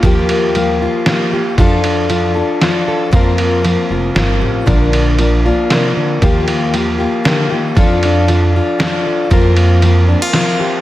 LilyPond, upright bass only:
\new Staff \with { instrumentName = "Upright bass" } { \clef bass \time 3/4 \key ees \lydian \tempo 4 = 116 ees,2 r4 | f,2 r4 | f,4. f,,8 g,,8 a,,8 | bes,,2 r4 |
ees,2 r4 | f,2 r4 | f,2 r4 | }